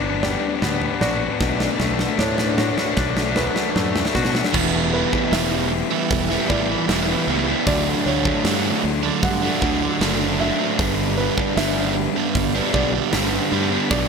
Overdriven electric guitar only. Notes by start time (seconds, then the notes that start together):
4.53 E3 G3 B3 E4
4.92 E3 G3 B3 E4
5.31 E3 G3 B3 E4
5.71 muted overdriven electric guitar stroke
5.91 G3 B3 E4
6.30 G3 B3 E4
6.50 E3 G3 B3 E4
6.69 G3 B3 E4
6.89 E3 G3 B3 E4
7.09 G3 B3 E4
7.28 E3 G3 B3 E4
7.48 G3 B3 E4
7.67 D3 F#3 A3 D4
8.06 D3 F#3 A3 D4
8.45 D3 F#3 A3 D4
8.84 muted overdriven electric guitar stroke
9.03 F#3 A3 D4
9.42 F#3 A3 D4
9.62 D3 F#3 A3 D4
9.81 F#3 A3 D4
10.00 D3 F#3 A3 D4
10.20 F#3 A3 D4
10.39 D3 F#3 A3 D4
10.59 F#3 A3 D4
10.78 G2 D3 G3 B3 D4
11.18 D3 G3 B3 D4
11.56 G2 D3 G3 B3 D4
11.96 muted overdriven electric guitar stroke
12.16 G3 B3 D4
12.54 G3 B3 D4
12.73 D3 G3 B3 D4
12.93 G3 B3 D4
13.12 G2 D3 G3 B3 D4
13.32 G3 B3 D4
13.51 D3 G3 B3 D4
13.71 G3 B3 D4
13.90 B2 F#3 B3 D4